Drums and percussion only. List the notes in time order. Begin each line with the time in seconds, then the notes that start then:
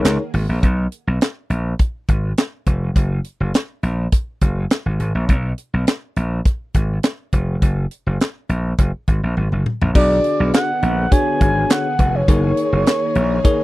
0.05 snare, clap, closed hi-hat
0.34 open hi-hat
0.63 kick, closed hi-hat
0.92 closed hi-hat
1.21 snare, clap, closed hi-hat
1.50 closed hi-hat
1.79 kick, closed hi-hat
2.08 kick, closed hi-hat
2.37 snare, clap, closed hi-hat
2.66 kick, closed hi-hat
2.96 kick, closed hi-hat
3.24 closed hi-hat
3.54 snare, clap, closed hi-hat
3.83 closed hi-hat
4.12 kick, closed hi-hat
4.41 kick, closed hi-hat
4.70 snare, clap, closed hi-hat
5.00 closed hi-hat
5.29 kick, closed hi-hat
5.58 closed hi-hat
5.87 snare, clap, closed hi-hat
6.16 closed hi-hat
6.45 kick, closed hi-hat
6.74 kick, closed hi-hat
7.03 snare, clap, closed hi-hat
7.32 kick, closed hi-hat
7.62 kick, closed hi-hat
7.91 closed hi-hat
8.20 snare, clap, closed hi-hat
8.49 closed hi-hat
8.78 kick, closed hi-hat
9.07 kick, closed hi-hat
9.37 high tom
9.52 mid tom
9.66 mid tom
9.81 floor tom
9.95 kick, crash
10.24 closed hi-hat
10.54 snare, clap, closed hi-hat
10.82 closed hi-hat
11.12 kick, closed hi-hat
11.41 kick, closed hi-hat
11.70 snare, clap, closed hi-hat
11.99 kick, closed hi-hat
12.28 kick, closed hi-hat
12.57 closed hi-hat
12.86 snare, clap, closed hi-hat
13.15 closed hi-hat
13.45 kick, closed hi-hat